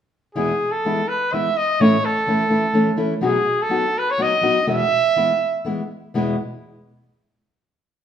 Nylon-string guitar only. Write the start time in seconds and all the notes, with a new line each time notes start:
0.35 E2 B2 E3 G#3 B3 E4
0.85 E3 G#3 B3 E4
1.32 E3 G#3 B3 E4
1.80 A2 E3 A3 C#4 E4
2.27 E3 A3 C#4 E4
2.49 E3 A3 C#4 E4
2.73 E3 A3 C#4 E4
2.96 E3 A3 C#4 E4
3.21 B2 F#3 B3 D#4 F#4
3.69 F#3 B3 D#4 F#4
4.18 F#3 B3 D#4 F#4
4.41 F#3 B3 D#4 F#4
4.66 E2 B2 E3 G#3 B3 E4
5.16 E3 G#3 B3 E4
5.65 E3 G#3 B3 E4
6.14 E2 B2 E3 G#3 B3 E4